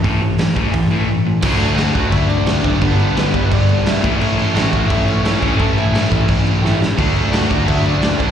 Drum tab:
CC |--------|xxxxxxxx|xxxxxxxx|xxxxxxxx|
HH |o-o-o---|--------|--------|--------|
SD |--o-----|--o---o-|--o---o-|--o---o-|
BD |o--oo---|o--oo--o|o--oo--o|---oo--o|

CC |xxxxxx--|xxxxxxxx|
HH |--------|--------|
SD |--o---oo|--o---o-|
BD |o--oo---|o--oo--o|